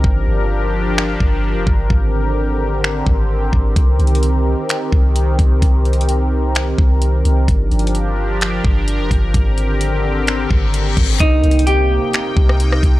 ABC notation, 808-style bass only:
X:1
M:4/4
L:1/16
Q:1/4=129
K:Cm
V:1 name="808-style bass" clef=bass
G,,,2 G,,,8 G,,,3 F,,, G,,,2 | A,,,8- A,,,2 A,,,4 A,,,2 | C,,2 C,,4- C,, z3 C,,4 C,,2 | C,,8- C,,2 C,,4 C,,2 |
G,,,2 G,,,8 G,,,3 F,,, G,,,2 | A,,,8- A,,,2 A,,,4 A,,,2 | C,,2 C,,4- C,, z3 C,,4 C,,2 |]